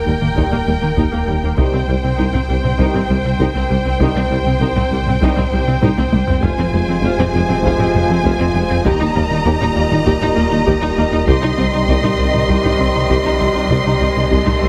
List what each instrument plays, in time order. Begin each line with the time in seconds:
Already playing: sub bass D#1, violin section A#4 G5
0.06 double bass section D#2, tuba D#2, cello section D#2, analog synth bass D#2, viola section G3
0.21 cello section D#2, analog synth bass D#3, viola section A#3, taiko low-mid
0.36 cello section D#2, tuba D#2, double bass section D#2, analog synth bass D#2, trombone section A#2 D#3, french horn section G3 G4, viola section D#4, taiko
0.51 cello section D#2, analog synth bass D#2, viola section A#3, taiko low-mid
0.66 cello section D#2, tuba D#2, analog synth bass D#2, double bass section D#2, viola section G3
0.82 cello section D#2, analog synth bass D#3, viola section A#3
0.96 cello section D#2, analog synth bass D#2, tuba D#2, double bass section D#2, viola section D#4, taiko
1.12 cello section D#2, analog synth bass D#2, viola section A#3
1.27 cello section D#2, double bass section D#2, tuba D#2, analog synth bass D#2, viola section G3
1.42 cello section D#2, analog synth bass D#2, viola section A#3
1.57 cello section C2, tuba C2, sub bass C2, double bass section C2, analog synth bass C2, trombone section C3 D#3, french horn section G3 G4, viola section D#4, violin section C5 G5, taiko
1.73 cello section C2, analog synth bass C3, viola section C4
1.87 cello section C2, analog synth bass C2, tuba C2, double bass section C2, viola section G3
2.03 cello section C2, analog synth bass C3, viola section C4
2.17 cello section C2, tuba C2, analog synth bass C2, double bass section C2, viola section D#4
2.33 cello section C2, analog synth bass C2, viola section C4, taiko low-mid
2.49 tuba C2, double bass section C2, cello section C2, analog synth bass C2, viola section G3
2.64 cello section C2, analog synth bass C3, viola section C4, taiko low-mid
2.78 tuba C2, double bass section C2, cello section C2, analog synth bass C2, trombone section C3 D#3, french horn section G3 G4, viola section D#4, taiko
2.94 analog synth bass C2, cello section C2, viola section C4, taiko low-mid
3.09 double bass section C2, analog synth bass C2, cello section C2, tuba C2, viola section G3
3.24 cello section C2, analog synth bass C3, viola section C4
3.39 double bass section C2, analog synth bass C2, cello section C2, tuba C2, viola section D#4, taiko
3.54 analog synth bass C2, cello section C2, viola section C4
3.69 analog synth bass C2, cello section C2, double bass section C2, tuba C2, viola section G3
3.85 analog synth bass C2, cello section C2, viola section C4
4.00 analog synth bass C2, double bass section C2, cello section C2, tuba C2, trombone section C3 D#3, french horn section G3 G4, viola section D#4, taiko
4.15 cello section C2, analog synth bass C3, viola section C4
4.30 tuba C2, double bass section C2, analog synth bass C2, cello section C2, viola section G3
4.45 cello section C2, analog synth bass C3, viola section C4
4.60 cello section C2, double bass section C2, tuba C2, analog synth bass C2, viola section D#4
4.76 cello section C2, analog synth bass C2, viola section C4, taiko low-mid
4.91 cello section C2, tuba C2, double bass section C2, analog synth bass C2, viola section G3
5.06 cello section C2, analog synth bass C3, viola section C4, taiko low-mid
5.21 cello section C2, tuba C2, double bass section C2, analog synth bass C2, trombone section C3 D#3, french horn section G3 G4, viola section D#4, taiko
5.36 cello section C2, analog synth bass C2, viola section C4, taiko low-mid
5.51 cello section C2, double bass section C2, analog synth bass C2, tuba C2, viola section G3
5.67 cello section C2, analog synth bass C3, viola section C4
5.81 cello section C2, double bass section C2, tuba C2, analog synth bass C2, viola section D#4, taiko low-mid
5.97 analog synth bass C2, cello section C2, viola section C4, taiko high
6.12 double bass section C2, analog synth bass C2, cello section C2, tuba C2, viola section G3, taiko high
6.27 analog synth bass C2, cello section C2, viola section C4, taiko low
6.42 double bass section F1, tuba F1, sub bass F1, cello section F2, analog synth bass F2, trombone section C3 F3, french horn section G#3 F4, viola section F4, violin section C5 G#5, taiko
6.58 cello section F2, analog synth bass F3, viola section C4
6.73 double bass section F1, tuba F1, cello section F2, analog synth bass F2, viola section G#3
6.88 cello section F2, analog synth bass F3, viola section C4
7.03 double bass section F1, tuba F1, analog synth bass F2, cello section F2, viola section F4
7.18 cello section F2, analog synth bass F2, viola section C4, taiko low-mid
7.33 double bass section F1, tuba F1, analog synth bass F2, cello section F2, viola section G#3
7.49 cello section F2, analog synth bass F3, viola section C4, taiko low-mid
7.63 tuba F1, double bass section F1, cello section F2, analog synth bass F2, viola section F4, taiko
7.79 cello section F2, analog synth bass F2, viola section C4, taiko low-mid
7.94 tuba F1, double bass section F1, cello section F2, analog synth bass F2, viola section G#3
8.09 cello section F2, analog synth bass F3, viola section C4
8.24 double bass section F1, tuba F1, cello section F2, analog synth bass F2, viola section F4, taiko
8.39 cello section F2, analog synth bass F2, viola section C4
8.55 tuba F1, double bass section F1, analog synth bass F2, cello section F2, viola section G#3
8.70 cello section F2, analog synth bass F2, viola section C4
8.85 sub bass D#1, cello section D#2, tuba D#2, double bass section D#2, analog synth bass D#2, trombone section A#2 D#3, french horn section G3 G4, viola section G4, violin section D#5 A#5, taiko
9.00 cello section D#2, analog synth bass D#3, viola section D#4
9.15 analog synth bass D#2, tuba D#2, cello section D#2, double bass section D#2, viola section A#3
9.30 cello section D#2, analog synth bass D#3, viola section D#4
9.45 cello section D#2, analog synth bass D#2, tuba D#2, double bass section D#2, viola section G4
9.61 cello section D#2, analog synth bass D#2, viola section D#4, taiko low-mid
9.76 cello section D#2, double bass section D#2, analog synth bass D#2, tuba D#2, viola section A#3
9.91 cello section D#2, analog synth bass D#3, viola section D#4, taiko low-mid
10.05 cello section D#2, analog synth bass D#2, tuba D#2, double bass section D#2, viola section G4, taiko
10.21 cello section D#2, analog synth bass D#2, viola section D#4, taiko low-mid
10.36 analog synth bass D#2, cello section D#2, tuba D#2, double bass section D#2, viola section A#3
10.51 cello section D#2, analog synth bass D#3, viola section D#4
10.65 cello section D#2, analog synth bass D#2, tuba D#2, double bass section D#2, viola section G4, taiko
10.81 cello section D#2, analog synth bass D#2, viola section D#4
10.97 cello section D#2, tuba D#2, analog synth bass D#2, double bass section D#2, viola section A#3
11.11 cello section D#2, analog synth bass D#2, viola section D#4
11.27 cello section C2, tuba C2, analog synth bass C2, double bass section C2, sub bass C2, trombone section C3 D#3, french horn section G3 G4, viola section G4, violin section D#5 C6, taiko, riser
11.42 cello section C2, analog synth bass C3, viola section D#4
11.57 cello section C2, double bass section C2, tuba C2, analog synth bass C2, viola section C4
11.73 cello section C2, analog synth bass C3, viola section D#4
11.88 cello section C2, analog synth bass C2, double bass section C2, tuba C2, viola section G4
12.03 cello section C2, analog synth bass C2, viola section D#4, taiko low-mid
12.18 cello section C2, tuba C2, analog synth bass C2, double bass section C2, viola section C4
12.33 cello section C2, analog synth bass C3, viola section D#4, taiko low-mid
12.48 cello section C2, double bass section C2, tuba C2, analog synth bass C2, viola section G4, taiko
12.63 cello section C2, analog synth bass C2, viola section D#4, taiko low-mid
12.79 cello section C2, analog synth bass C2, tuba C2, double bass section C2, viola section C4
12.93 cello section C2, analog synth bass C3, viola section D#4
13.09 cello section C2, tuba C2, double bass section C2, analog synth bass C2, viola section G4, taiko
13.24 cello section C2, analog synth bass C2, viola section D#4
13.40 cello section C2, double bass section C2, analog synth bass C2, tuba C2, viola section C4
13.55 cello section C2, analog synth bass C2, viola section D#4
13.70 cello section C2, tuba C2, double bass section C2, analog synth bass C2, viola section G4, taiko
13.85 cello section C2, analog synth bass C3, viola section D#4
14.00 cello section C2, tuba C2, analog synth bass C2, double bass section C2, viola section C4
14.15 cello section C2, analog synth bass C3, viola section D#4
14.30 tuba C2, cello section C2, double bass section C2, analog synth bass C2, viola section G4
14.45 cello section C2, analog synth bass C2, viola section D#4, taiko low-mid
14.61 double bass section C2, tuba C2, cello section C2, analog synth bass C2, viola section C4